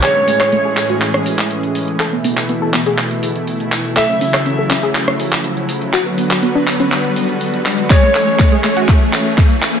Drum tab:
HH |x-oxx-oxxxoxxxox|x-oxx-oxxxoxoxox|x-oxx-oxxxoxxxox|x-oxx-oxxxoxoxox|
CP |x--x--x-x--x----|x--x--x-x-----x-|x--x--x-x--x----|x--x--x-x-----x-|
SD |---r-----r------|----------------|---r-----r------|----------------|
BD |----------------|----------------|----------------|----------------|

HH |x-oxx-oxxxoxxxox|
CP |x-x-x-x-x-x-x-x-|
SD |----------------|
BD |o---o---o---o---|